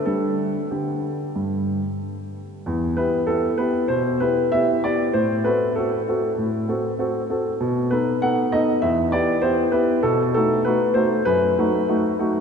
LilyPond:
\new Staff \with { instrumentName = "Grand piano" } { \time 4/4 \key c \lydian \tempo 4 = 98 << { a'4 g'2~ g'8 r8 | \key e \minor r8 b'8 a'8 b'8 c''8 b'8 e''8 d''8 | c''8 b'8 a'2. | r8 b'8 fis''8 dis''8 e''8 d''8 c''8 b'8 |
a'8 a'8 b'8 c''8 b'2 | } \\ { <g d' g'>4 d4 g,4 r4 | e,8 <b e' g'>8 <b e' g'>8 <b e' g'>8 b,8 <b e' g'>8 <b e' g'>8 <b e' g'>8 | a,8 <c' fis' a'>8 <c' fis'>8 <c' fis' a'>8 a,8 <c' fis' a'>8 <c' fis' a'>8 <c' fis' a'>8 | b,8 <b dis' a'>8 <b dis' a'>8 <b dis' a'>8 e,8 <b e' g'>8 <b e' g'>8 <b e' g'>8 |
b,8 <a dis' fis'>8 <a dis' fis'>8 <a dis' fis'>8 fis,8 <a dis' fis'>8 <a dis' fis'>8 <a dis' fis'>8 | } >> }